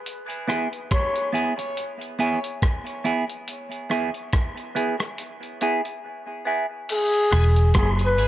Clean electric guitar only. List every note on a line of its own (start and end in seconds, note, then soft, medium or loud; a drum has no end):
0.47 0.67 B3 medium
0.47 0.67 E4 medium
0.47 0.68 G#4 medium
1.32 1.52 B3 medium
1.32 1.53 E4 medium
1.32 1.53 G#4 medium
1.58 muted clean electric guitar stroke soft
2.19 2.38 B3 medium
2.19 2.38 E4 medium
2.19 2.39 G#4 medium
3.04 3.23 B3 medium
3.04 3.24 E4 medium
3.04 3.24 G#4 medium
3.90 4.09 B3 medium
3.90 4.09 E4 medium
3.90 4.10 G#4 medium
4.75 4.94 B3 medium
4.75 4.95 E4 medium
4.75 4.95 G#4 medium
4.99 muted clean electric guitar stroke soft
5.61 5.80 B3 medium
5.61 5.80 E4 medium
5.61 5.81 G#4 medium
6.45 6.65 B3 medium
6.45 6.65 E4 medium
6.45 6.66 G#4 medium
7.31 7.50 B3 medium
7.31 7.51 E4 medium
7.31 7.51 G#4 medium
8.18 8.28 B3 medium
8.18 8.28 E4 medium
8.18 8.28 G#4 medium